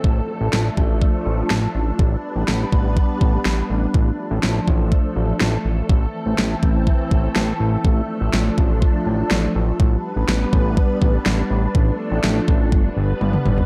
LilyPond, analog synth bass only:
\new Staff \with { instrumentName = "Analog synth bass" } { \clef bass \time 4/4 \key d \dorian \tempo 4 = 123 a,,8 r16 a,,16 a,,8 a,,8. r16 a,,8 a,,8 a,,8 | a,,8 r16 a,,16 a,,8 a,,8. r16 a,,8 a,,8 a,,8 | a,,8 r16 a,,16 a,,8 a,,8. r16 a,,8 a,,8 a,,8 | a,,8 r16 a,,16 a,,8 a,,8. r16 a,,8 a,,8 a,,8 |
a,,8 r16 a,,16 a,,8 a,,8. r16 a,,8 a,,8 a,,8 | a,,8 r16 a,,16 a,,8 a,,8. r16 a,,8 a,,8 a,,8 | a,,8 r16 a,,16 a,,8 a,,8 g,,8 g,,8 g,,8 g,,8 | }